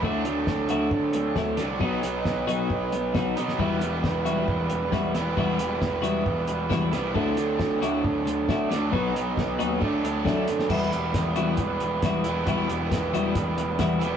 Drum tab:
CC |----------------|----------------|----------------|----------------|
HH |--x---x---x---x-|--x---x---x---x-|--x---x---x---x-|--x---x---x---x-|
SD |----o-------o-o-|----o-------o--o|----o-------o-o-|----o-------o-o-|
BD |o---o---o---o---|o---o---o---o---|o---o---o---o---|o---o---o---o---|

CC |----------------|----------------|x---------------|----------------|
HH |--x---x---x---x-|--x---x---x---x-|--x-x-x-x-x-x-x-|x-x-x-x-x-x-x-x-|
SD |----o-------o-o-|----o-------o--o|----o-------o---|----o-------o---|
BD |o---o---o---o---|o---o---o---o---|o---o---o---o---|o---o---o---o---|